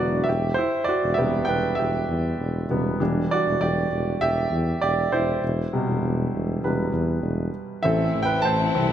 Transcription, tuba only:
0.00 0.22 E1 medium
0.28 0.55 E1 medium
1.03 1.16 E1 medium
1.19 1.43 E1 medium
1.48 1.73 E1 medium
1.79 2.04 E1 medium
2.09 2.34 E2 medium
2.39 2.64 E1 medium
2.69 2.94 E1 medium
3.00 3.25 E1 medium
3.46 3.58 E1 medium
3.61 3.85 E1 medium
3.91 4.16 E1 medium
4.21 4.46 E1 medium
4.51 4.76 E2 medium
4.82 5.06 E1 medium
5.12 5.37 E1 medium
5.42 5.67 E1 medium
5.87 6.00 E1 medium
6.02 6.27 E1 medium
6.32 6.57 E1 medium
6.63 6.88 E1 medium
6.93 7.18 E2 medium
7.23 7.48 E1 medium
7.84 8.09 A1 loud
8.15 8.39 A1 medium
8.45 8.69 A1 medium
8.75 8.93 C2 medium

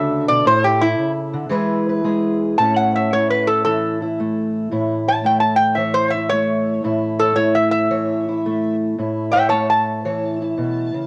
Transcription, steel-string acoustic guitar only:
0.00 0.29 C#3 medium
0.00 0.47 D3 medium
0.00 0.45 A3 medium
0.00 0.46 D4 medium
0.00 0.46 F#4 medium
0.00 1.51 A4 medium
0.29 0.45 B2 medium
0.45 0.98 A2 medium
0.45 0.82 E4 medium
0.83 1.50 E4 medium
0.99 1.35 C#3 medium
1.34 1.49 D3 medium
1.49 2.55 E3 medium
1.49 2.03 G#3 medium
1.49 2.56 E4 medium
1.49 2.04 G#4 medium
1.49 1.88 B4 medium
1.89 2.57 B4 medium
2.04 2.56 G#3 medium
2.04 2.56 G#4 medium
2.58 4.71 A2 medium
2.58 3.12 A3 medium
2.58 6.10 C#4 medium
2.58 3.14 E4 medium
2.58 2.95 C#5 medium
2.95 5.08 C#5 medium
3.13 4.19 A3 medium
3.13 3.66 E4 medium
3.66 5.77 E3 medium
3.66 4.01 E4 medium
4.02 4.72 E4 medium
4.20 5.24 A3 medium
4.71 6.84 A2 medium
4.71 5.24 E4 medium
5.08 5.77 C#5 medium
5.24 6.32 A3 medium
5.24 6.14 E4 medium
5.77 7.90 E3 medium
5.77 7.21 C#5 medium
6.15 6.84 E4 medium
6.32 7.35 A3 medium
6.84 8.97 A2 medium
6.84 7.36 E4 medium
7.22 7.90 C#5 medium
7.36 8.45 A3 medium
7.36 8.26 E4 medium
7.91 8.95 E3 medium
7.91 8.95 C#5 medium
8.29 8.98 E4 medium
8.46 9.51 A3 medium
8.99 10.57 A2 medium
8.99 9.51 E4 medium
9.36 10.04 C#5 medium
9.52 11.07 A3 medium
9.52 10.40 E4 medium
10.05 11.07 E3 medium
10.05 11.07 C#5 medium
10.42 11.07 E4 medium
10.58 10.93 B2 medium
10.94 11.07 C#3 medium

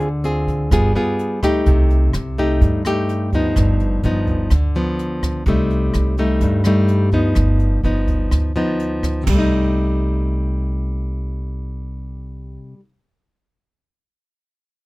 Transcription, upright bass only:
0.00 0.73 D2 medium
0.71 0.93 G1 medium
1.66 2.11 C2 medium
2.14 2.58 C2 medium
2.61 3.52 G2 medium
3.56 4.01 G1 medium
4.04 4.48 G1 medium
4.51 5.42 D2 medium
5.46 5.90 C2 medium
5.94 6.38 C2 medium
6.41 7.32 G2 medium
7.36 7.80 G1 medium
7.83 8.28 G1 medium
8.31 9.22 D2 medium
9.27 12.56 C2 medium

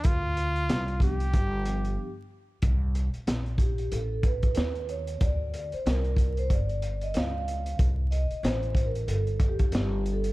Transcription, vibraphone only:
1.00 1.25 F3 medium
1.00 1.25 B3 medium
1.00 1.26 D4 medium
1.00 1.26 G4 medium
1.64 2.05 F3 medium
1.64 2.05 B3 medium
1.64 2.05 D4 medium
1.64 2.06 G4 medium
3.61 3.93 G4 medium
3.93 4.25 A4 medium
4.25 4.85 B4 medium
4.90 5.22 C#5 medium
5.23 5.75 D5 loud
5.74 5.85 C5 medium
5.87 6.39 A#4 medium
6.38 6.51 C5 medium
6.53 7.04 D5 loud
7.03 7.08 D#5 medium
7.17 7.76 F5 medium
8.11 8.44 D#5 medium
8.44 8.88 C5 medium
8.86 9.08 A#4 medium
9.08 9.52 A4 medium
9.49 10.16 G4 medium
10.13 10.33 A4 medium

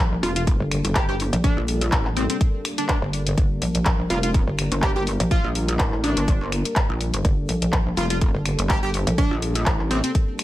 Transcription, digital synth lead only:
0.23 0.31 F4 medium
0.36 0.43 F4 medium
0.95 1.04 G4 medium
1.09 1.16 G4 medium
1.44 1.61 D4 loud
2.17 2.25 C4 medium
2.30 2.37 C4 medium
2.78 2.85 D4 medium
2.89 2.98 D4 medium
4.10 4.19 F4 medium
4.23 4.30 F4 medium
4.83 4.91 G4 medium
4.96 5.03 G4 medium
5.31 5.48 F4 loud
6.04 6.52 D4 medium
7.97 8.06 F4 medium
8.10 8.17 F4 medium
8.70 8.78 G4 medium
8.83 8.90 G4 medium
9.18 9.35 D4 loud
9.91 9.99 C4 medium
10.04 10.11 C4 medium

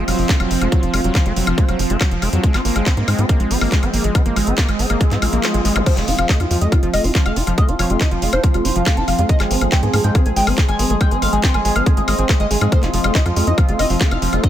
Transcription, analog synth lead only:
5.86 5.92 C5 loud
5.97 6.02 F4 medium
6.08 6.13 F4 medium
6.19 6.24 F4 medium
6.29 6.35 D#5 medium
6.40 6.45 F4 medium
6.51 6.56 F4 medium
6.61 6.67 D#5 loud
6.72 6.77 F4 medium
6.83 6.88 F4 medium
6.93 6.99 D#5 loud
7.04 7.10 F4 medium
7.15 7.20 F4 medium
7.26 7.31 F5 loud
7.36 7.42 F4 medium
7.47 7.53 F4 medium
7.58 7.63 D#5 medium
7.69 7.74 F4 medium
7.79 7.85 C#5 medium
7.90 7.95 F4 medium
8.01 8.06 D#5 medium
8.11 8.17 F4 medium
8.22 8.27 F4 medium
8.33 8.38 C5 loud
8.44 8.49 F4 medium
8.54 8.60 F4 medium
8.65 8.70 C5 medium
8.76 8.81 F4 medium
8.86 8.92 F4 medium
8.97 9.02 A4 medium
9.08 9.13 F4 medium
9.19 9.24 F4 medium
9.29 9.35 D#5 loud
9.40 9.45 G#4 medium
9.51 9.56 G#4 medium
9.61 9.67 G#4 medium
9.72 9.77 G5 loud
9.83 9.88 G#4 medium
9.94 9.99 G#4 medium
10.04 10.10 G5 medium
10.15 10.20 G#4 medium
10.26 10.31 G#4 medium
10.36 10.42 G5 medium
10.47 10.52 G#4 medium
10.58 10.63 G#4 medium
10.69 10.74 G#5 loud
10.79 10.85 G#4 medium
10.90 10.95 G#4 medium
11.01 11.06 G5 medium
11.11 11.17 G#4 medium
11.22 11.27 F5 medium
11.33 11.38 G#4 medium
11.44 11.49 G5 medium
11.54 11.60 G#4 medium
11.65 11.70 G#4 medium
11.76 11.81 F5 loud
11.87 11.92 G#4 medium
11.97 12.02 G#4 medium
12.08 12.13 D#5 medium
12.19 12.24 G#4 medium
12.29 12.35 G#4 medium
12.40 12.45 D#5 loud
12.51 12.56 G#4 medium
12.61 12.67 G#4 medium
12.72 12.77 C5 loud
12.83 12.88 F4 medium
12.94 12.99 F4 medium
13.04 13.10 F4 medium
13.15 13.20 D#5 loud
13.26 13.31 F4 medium
13.36 13.42 F4 medium
13.47 13.52 D#5 loud
13.58 13.63 F4 medium
13.68 13.74 F4 medium
13.79 13.85 D#5 medium
13.90 13.95 F4 medium
14.01 14.06 F4 medium
14.11 14.17 F5 loud
14.22 14.27 F4 medium
14.33 14.38 F4 medium
14.44 14.49 D#5 medium

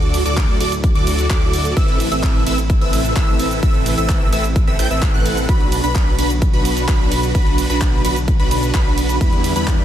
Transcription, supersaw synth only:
0.00 0.23 F#4 medium
0.00 0.23 A4 medium
0.00 0.23 D5 medium
0.26 0.58 F#4 loud
0.26 0.58 A4 medium
0.26 0.58 D5 loud
0.60 0.72 F#4 medium
0.60 0.72 A4 medium
0.60 0.72 D5 loud
0.95 1.27 F#4 medium
0.95 1.27 A4 medium
0.95 1.27 D5 medium
1.30 1.74 F#4 medium
1.30 1.74 A4 medium
1.30 1.74 D5 medium
1.77 2.09 C4 medium
1.77 2.09 E4 medium
1.77 2.09 A4 medium
1.77 2.09 B4 medium
1.77 2.09 E5 medium
2.12 2.44 C4 loud
2.12 2.44 E4 medium
2.12 2.44 A4 medium
2.12 2.44 B4 medium
2.12 2.44 E5 loud
2.46 2.58 C4 medium
2.46 2.58 E4 medium
2.46 2.58 A4 medium
2.46 2.58 B4 medium
2.46 2.58 E5 loud
2.81 3.13 C4 medium
2.81 3.13 E4 medium
2.81 3.13 A4 medium
2.81 3.13 B4 medium
2.81 3.13 E5 medium
3.16 3.60 C4 medium
3.16 3.60 E4 medium
3.16 3.60 A4 medium
3.16 3.60 B4 medium
3.16 3.60 E5 medium
3.63 3.95 C4 medium
3.63 3.95 E4 medium
3.63 3.95 A4 medium
3.63 3.95 B4 medium
3.63 3.95 E5 medium
3.98 4.30 C4 loud
3.98 4.30 E4 medium
3.98 4.30 A4 medium
3.98 4.30 B4 medium
3.98 4.30 E5 loud
4.33 4.44 C4 medium
4.33 4.44 E4 medium
4.33 4.44 A4 medium
4.33 4.44 B4 medium
4.33 4.44 E5 loud
4.67 4.77 C4 medium
4.67 4.77 E4 medium
4.67 4.77 A4 medium
4.67 4.77 B4 medium
4.67 4.77 E5 medium
4.79 4.88 C4 loud
4.79 4.88 E4 loud
4.79 4.88 A4 medium
4.79 4.88 B4 loud
4.79 4.88 G5 loud
4.91 5.11 C4 medium
4.91 5.11 E4 medium
4.91 5.11 A4 medium
4.91 5.11 B4 medium
4.91 5.11 E5 medium
5.14 5.46 C4 medium
5.14 5.46 E4 medium
5.14 5.46 A4 medium
5.14 5.46 B4 medium
5.14 5.46 F#5 medium
5.49 5.81 D4 medium
5.49 5.81 F#4 medium
5.49 5.81 B4 medium
5.84 6.16 D4 loud
5.84 6.16 F#4 medium
5.84 6.16 B4 loud
6.19 6.31 D4 medium
6.19 6.31 F#4 medium
6.19 6.31 B4 loud
6.53 6.86 D4 medium
6.53 6.86 F#4 medium
6.53 6.86 B4 medium
6.88 7.32 D4 medium
6.88 7.32 F#4 medium
6.88 7.32 B4 medium
7.35 7.67 D4 medium
7.35 7.67 F#4 medium
7.35 7.67 B4 medium
7.70 8.02 D4 loud
7.70 8.02 F#4 medium
7.70 8.02 B4 loud
8.05 8.17 D4 medium
8.05 8.17 F#4 medium
8.05 8.17 B4 loud
8.39 8.72 D4 medium
8.39 8.72 F#4 medium
8.39 8.72 B4 medium
8.74 9.18 D4 medium
8.74 9.18 F#4 medium
8.74 9.18 B4 loud
9.21 9.53 G3 medium
9.21 9.53 B3 medium
9.21 9.53 D4 medium
9.21 9.53 E4 medium
9.21 9.53 B4 medium
9.56 9.85 G3 loud
9.56 9.85 B3 medium
9.56 9.85 D4 medium
9.56 9.85 E4 medium
9.56 9.85 B4 loud

